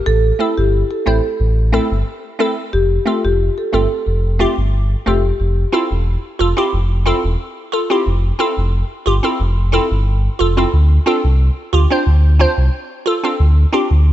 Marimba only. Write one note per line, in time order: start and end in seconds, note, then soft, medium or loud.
0.06 0.18 A4 loud
0.40 0.52 E4 medium
0.57 0.68 G4 medium
0.91 1.01 A4 medium
1.07 1.19 A4 medium
2.73 2.85 G4 loud
3.06 3.19 F4 medium
3.25 3.35 G4 medium
3.58 3.68 A4 medium
3.73 3.85 A4 medium
5.06 5.19 G4 medium